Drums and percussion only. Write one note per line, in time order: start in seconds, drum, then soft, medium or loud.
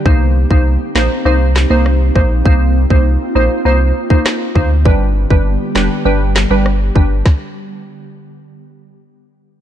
0.06 kick loud
0.51 kick medium
0.96 snare loud
0.96 clap medium
1.56 snare loud
1.56 clap medium
1.86 cross-stick medium
2.16 kick medium
2.46 kick loud
2.90 kick medium
4.10 kick medium
4.26 cross-stick medium
4.26 snare loud
4.26 clap medium
4.55 kick medium
4.85 kick loud
5.30 kick medium
5.76 snare loud
5.76 clap medium
6.36 snare loud
6.36 clap medium
6.66 cross-stick medium
6.96 kick medium
7.26 kick loud
7.26 snare medium